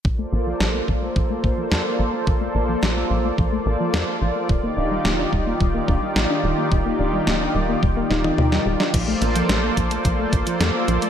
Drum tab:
CC |----------------|----------------|----------------|----------------|
HH |----------------|----------------|----------------|----------------|
SD |----o-------o---|----o-------o---|----o-------o---|----o-----o--o-o|
T1 |----------------|----------------|----------------|-----------o----|
T2 |----------------|----------------|----------------|------------o---|
BD |o-----o-o-o-----|o-------o-------|o-----o-o-o-----|o-------o-------|

CC |x---------------|
HH |x-xxx-xxx-xxx-xx|
SD |----o-------o---|
T1 |----------------|
T2 |----------------|
BD |o-----o-o-o-----|